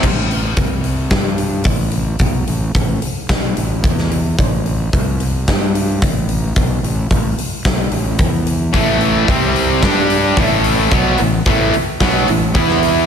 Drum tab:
CC |x---------------|----------------|----------------|----------------|
HH |--o-o-o-o-o-o-o-|o-o-o-o-o-o-o-o-|o-o-o-o-o-o-o-o-|o-o-o-o-o-o-o-o-|
SD |--------o-------|--------o----o--|--------o-------|--------o-------|
BD |o---o---o---o---|o---o---o---o---|o---o---o---o---|o---o---o---o---|

CC |----------------|----------------|
HH |o-o-o-o-o-o-o-o-|o-o-o-o-o-o-o-o-|
SD |--------o-------|--------o----o--|
BD |o---o---o---o---|o---o---o---o---|